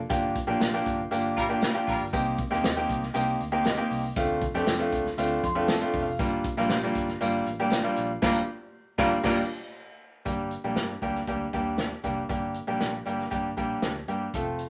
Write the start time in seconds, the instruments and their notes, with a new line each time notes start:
0.10 fingered electric bass G1, grand piano A#3 D4 F4 G4, kick, closed hi-hat, tambourine
0.35 kick, closed hi-hat
0.47 fingered electric bass A#1, grand piano A#3 D4 F4 G4
0.60 fingered electric bass A#1, clean electric guitar A#3 F4 G4 D5, snare, closed hi-hat, tambourine
0.74 grand piano A#3 D4 F4 G4
0.86 fingered electric bass G1, kick, closed hi-hat
1.11 fingered electric bass G1, grand piano A#3 D4 F4 G4, closed hi-hat, tambourine
1.37 fingered electric bass A1, horn section G3 F4 A#4, kick, closed hi-hat
1.49 grand piano A#3 D4 F4 G4
1.61 horn section G3 F4 A#4, clean electric guitar A#3 F4 G4 D5, snare, closed hi-hat, tambourine
1.74 grand piano A#3 D4 F4 G4
1.87 fingered electric bass A#1, horn section G3 F4 A#4, kick, open hi-hat
2.01 fingered electric bass G1
2.13 fingered electric bass C2, grand piano A#3 C4 D#4 G4, kick, closed hi-hat, tambourine
2.38 kick, closed hi-hat
2.51 fingered electric bass D#2, grand piano A#3 C4 D#4 G4, snare
2.63 fingered electric bass D#2, clean electric guitar C4 G4 A#4 D#5, snare, closed hi-hat, tambourine
2.76 grand piano A#3 C4 D#4 G4
2.89 fingered electric bass C2, kick, closed hi-hat
3.03 snare
3.14 fingered electric bass C2, grand piano A#3 C4 D#4 G4, closed hi-hat, tambourine
3.40 fingered electric bass D2, closed hi-hat
3.52 grand piano A#3 C4 D#4 G4
3.65 clean electric guitar C4 G4 A#4 D#5, snare, closed hi-hat, tambourine
3.77 grand piano A#3 C4 D#4 G4
3.90 fingered electric bass C2, open hi-hat
4.16 fingered electric bass D2, grand piano A3 C4 D4 F4, kick, closed hi-hat, tambourine
4.41 kick, closed hi-hat
4.54 fingered electric bass F2, grand piano A3 C4 D4 G4, snare
4.66 fingered electric bass F2, clean electric guitar C4 F4 A4 D5, snare, closed hi-hat, tambourine
4.79 grand piano A3 C4 D4 F4
4.92 fingered electric bass D2, kick, closed hi-hat
5.06 snare
5.18 fingered electric bass D2, grand piano A3 C4 D4 F4, closed hi-hat, tambourine
5.44 fingered electric bass F2, grand piano C6, kick, closed hi-hat
5.55 grand piano A3 C4 D4 F4
5.67 clean electric guitar C4 F4 A4 D5, grand piano A5, snare, closed hi-hat, tambourine
5.81 grand piano A3 C4 D4 F4
5.93 fingered electric bass F1, kick, open hi-hat
6.03 grand piano F5
6.19 fingered electric bass G1, grand piano G3 A#3 D4 F4, kick, closed hi-hat, tambourine
6.44 kick, closed hi-hat
6.57 fingered electric bass A#1, grand piano G3 A#3 D4 F4, snare
6.70 fingered electric bass A#1, clean electric guitar A#3 F4 G4 D5, snare, closed hi-hat, tambourine
6.83 grand piano G3 A#3 D4 F4
6.95 fingered electric bass G1, kick, closed hi-hat
7.08 snare
7.20 fingered electric bass G1, grand piano G3 A#3 D4 F4, closed hi-hat, tambourine
7.46 fingered electric bass A1, closed hi-hat
7.59 grand piano G3 A#3 D4 G4
7.70 clean electric guitar A#3 F4 G4 D5, snare, closed hi-hat, tambourine
7.84 grand piano G3 A#3 D4 F4
7.96 fingered electric bass A#1, closed hi-hat
8.22 fingered electric bass G1, grand piano G3 A#3 D4 F4, horn section G3 F4 A#4, clean electric guitar A#3 F4 G4 D5, kick, snare, crash
8.98 fingered electric bass G1, grand piano G3 A#3 D4 F4, horn section G3 F4 A#4, clean electric guitar A#3 F4 G4 D5, kick, snare
9.23 fingered electric bass G1, grand piano G3 A#3 D4 F4, horn section G3 F4 A#4, clean electric guitar A#3 F4 G4 D5, kick, snare, crash
10.25 fingered electric bass G1, grand piano G3 A#3 D4 G4, kick, closed hi-hat
10.51 closed hi-hat
10.64 fingered electric bass A#1, grand piano G3 A#3 D4 G4
10.76 fingered electric bass G2, clean electric guitar D4 G4 A#4 D5, snare, closed hi-hat
11.02 fingered electric bass D2, grand piano G3 A#3 D4 G4, kick, closed hi-hat
11.15 snare
11.27 fingered electric bass D2, grand piano G3 A#3 D4 G4, kick, closed hi-hat
11.53 fingered electric bass D#2, grand piano G3 A#3 D4 G4, kick, closed hi-hat
11.78 clean electric guitar D4 G4 A#4 D5, snare, closed hi-hat
12.04 fingered electric bass F1, grand piano G3 A#3 D4 G4, kick, closed hi-hat
12.29 fingered electric bass G1, grand piano G3 A#3 D4 G4, kick, closed hi-hat
12.54 closed hi-hat
12.67 fingered electric bass A#1, grand piano G3 A#3 D4 G4
12.80 fingered electric bass A#1, clean electric guitar D4 G4 A#4 D5, snare, closed hi-hat
13.05 fingered electric bass G1, grand piano G3 A#3 D4 G4, closed hi-hat
13.20 snare
13.30 fingered electric bass G1, grand piano G3 A#3 D4 G4, kick, closed hi-hat
13.57 fingered electric bass A#1, grand piano G3 A#3 D4 G4, kick, closed hi-hat
13.82 fingered electric bass D2, clean electric guitar D4 G4 A#4 D5, snare, closed hi-hat
14.08 fingered electric bass G2, grand piano G3 A#3 D4 G4, closed hi-hat
14.34 fingered electric bass F1, grand piano A3 C4 F4 A4, kick, closed hi-hat
14.59 closed hi-hat